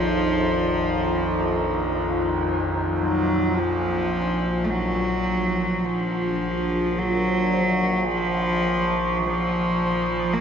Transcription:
Already playing: A#1 F2 F3 D#4 F4 C#5 A#5
3.00 F#3
3.57 A#1 F3 F4
4.35 C5
4.64 A3
4.71 F#3
5.85 F3
6.98 F#3
8.09 F3
9.23 F3
10.34 A#3

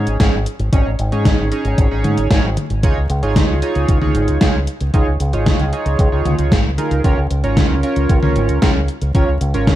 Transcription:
Already playing: C#4 D#4 G#4 C#5
0.07 G#1, closed hi-hat
0.20 G#1 C#4 D#4 G#4 C#5, kick, snare, closed hi-hat
0.33 G#1
0.46 closed hi-hat
0.59 G#1, closed hi-hat
0.73 G#1 C#4 D#4 G#4 C#5, kick, closed hi-hat
0.86 G#1
0.99 G#1, closed hi-hat
1.12 G#2 C#4 D#4 G#4 C#5, closed hi-hat
1.25 G#1, kick, snare, closed hi-hat, high tom
1.39 G#1
1.52 C#4 D#4 G#4 C#5, closed hi-hat
1.65 G#1, closed hi-hat
1.78 G#1, kick, closed hi-hat
1.91 G#1 C#4 D#4 G#4 C#5
2.04 G#2, closed hi-hat, high tom
2.17 G#1, closed hi-hat
2.31 G#1 C#4 D#4 G#4 C#5, kick, snare, closed hi-hat
2.44 G#1
2.57 closed hi-hat, high tom
2.70 G#1, closed hi-hat
2.83 C#2 D#4 F4 G#4 C#5, kick, closed hi-hat
2.97 C#2
3.10 C#2, closed hi-hat
3.23 G#1 D#4 F4 G#4 C#5, closed hi-hat
3.36 C#2, kick, snare, closed hi-hat, high tom
3.49 C#2
3.62 D#4 F4 G#4 C#5, closed hi-hat
3.75 C#2, closed hi-hat
3.88 C#2, kick, closed hi-hat
4.02 C#2 D#4 F4 G#4 C#5, high tom
4.15 G#1, closed hi-hat
4.28 C#2, closed hi-hat
4.41 C#2 D#4 F4 G#4 C#5, kick, snare, closed hi-hat
4.54 C#2
4.67 closed hi-hat
4.81 C#2, closed hi-hat
4.94 C#2 D#4 F4 G#4 C#5, kick, closed hi-hat
5.07 C#2
5.20 C#2, closed hi-hat
5.33 G#1 D#4 F4 G#4 C#5, closed hi-hat
5.46 C#2, kick, snare, closed hi-hat, high tom
5.59 C#2, closed hi-hat
5.73 D#4 F4 G#4 C#5, closed hi-hat
5.86 C#2, closed hi-hat
5.99 C#2, kick, closed hi-hat
6.12 C#2 D#4 F4 G#4 C#5
6.25 C#2, closed hi-hat, high tom
6.38 C#2 D#4 F4 G#4 C#5, closed hi-hat
6.52 G#1, kick, snare, closed hi-hat
6.65 C#2
6.78 D#4 F4 G#4 A#4, closed hi-hat, high tom
6.91 C#2, closed hi-hat
7.04 C#2 C#4 F4 A#4 C#5, kick, closed hi-hat
7.17 C#2
7.30 C#2, closed hi-hat
7.44 G#1 C#4 F4 A#4 C#5, closed hi-hat
7.57 C#2, kick, snare, closed hi-hat, high tom
7.70 C#2
7.83 C#4 F4 A#4 C#5, closed hi-hat
7.96 C#2, closed hi-hat
8.09 C#2, kick, closed hi-hat
8.23 C#2 C#4 F4 A#4 C#5, high tom
8.36 G#1, closed hi-hat
8.49 C#2, closed hi-hat
8.62 C#2 C#4 F4 A#4 C#5, kick, snare, closed hi-hat
8.75 C#2
8.88 closed hi-hat
9.01 C#2, closed hi-hat
9.15 C#2 C#4 F4 A#4 C#5, kick, closed hi-hat
9.28 C#2
9.41 C#2, closed hi-hat
9.54 G#1 C#4 F4 A#4 C#5, closed hi-hat
9.67 C#2, kick, snare, closed hi-hat, high tom

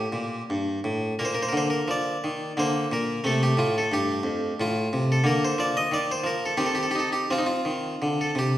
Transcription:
Already playing: A#3 G4
0.12 A#2
0.50 G2
0.84 A2
1.19 A#2 A#3 A#4
1.25 C5
1.35 A#4
1.43 C5
1.49 D3 A#4
1.57 C5
1.70 A#4
1.88 F3 D5
2.24 D#3
2.57 D3 A#3 C5
2.92 A#2 A#4
3.24 C3 A3 A4
3.43 G4
3.57 A2 F4
3.78 A4
3.92 G2 G4
4.23 F2
4.60 A2 F4
4.93 C3
5.12 A4
5.24 D3 A#3 A#4
5.45 C5
5.58 F3 D5
5.77 D#5
5.92 D#3 D5
6.11 C5
6.24 F3 A#4
6.46 A4
6.57 D#3 C4 G4
6.66 A4
6.75 G4
6.83 A4
6.91 G4
6.95 D#4 A4
7.13 G4
7.30 F3 C4 F4
7.38 D#4
7.46 F4
7.65 D#3
8.02 D3
8.21 A4
8.35 C3 G4

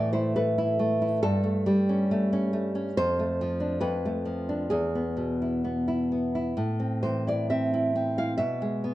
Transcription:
Already playing: A2 E3 A3 D5
0.13 E4 C5
0.36 A4 B4
0.58 E4
0.79 A3
1.02 E4
1.23 G2 A4
1.44 A3
1.66 G3
1.89 C#4
2.11 A3
2.33 C#4
2.53 A3
2.75 C#4
2.97 F2 C5
3.19 A3
3.41 F3
3.60 D4
3.81 F2 B4
4.05 A3
4.25 F3
4.49 D4
4.70 E2 G#4
4.95 B3
5.17 B2
5.42 E4
5.64 B3
5.88 E4
6.12 B3
6.35 E4
6.57 A2
6.80 C4
7.03 E3 C5
7.27 E4 D5
7.50 C4 E5
7.74 E4
7.96 C4
8.18 E4 F5
8.38 B2 E5
8.62 G#3
8.84 B3

